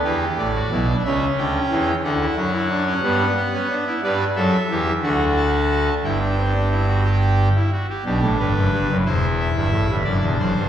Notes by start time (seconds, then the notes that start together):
0.04 E2 E3 G4 B4
0.38 A1 A2 D5
0.55 F#4
0.72 B1 B2 E4
0.88 D4
1.05 C#2 C#3 C#4 E5
1.38 D2 D3 G5
1.71 E2 E3
2.04 D2 D3 D4 F#5
2.21 E4
2.36 F#2 F#3 F#4
2.53 E4
2.70 D4
2.86 C#4
3.03 G2 G3 B3
3.36 B3
3.53 C#4
3.70 D4
3.87 E4
4.03 G2 G3 B4 D5
4.36 F#2 F#3 A4 E5
4.71 E2 E3 G4
5.03 D2 D3 F#4 F#5
5.37 A5
6.04 G1 G2 E4 G5
6.21 D4
6.38 C4
6.54 D4
6.71 E4
6.88 F#4
7.05 G4
7.56 E4
7.72 F#4
7.89 G4
8.05 B1 B2 D4 G4
8.22 A1 A2
8.39 G1 G2 B4
8.55 F#1 F#2
8.72 G1 G2
8.89 F#1 F#2
9.05 E1 E2 E4 C5
9.40 E5
9.56 G1 G2
9.72 A1 A2
9.88 G1 G2
10.04 F#1 F#2 D4 D5
10.21 E1 E2
10.39 F#1 F#2 C5
10.55 G1 G2